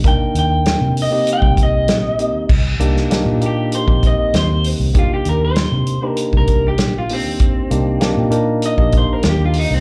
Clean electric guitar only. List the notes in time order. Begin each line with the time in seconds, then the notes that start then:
0.08 G5
0.39 G5
1.02 D#5
1.33 G5
1.63 D#5
3.46 G4
3.75 C5
4.07 D#5
4.36 C5
4.99 F4
5.14 G4
5.29 A#4
5.45 C5
6.08 A#4
6.37 A#4
6.68 G4
6.99 F4
7.13 C4
8.66 D#5
8.98 C5
9.13 A#4
9.29 G4
9.45 F4
9.59 D#4
9.74 C4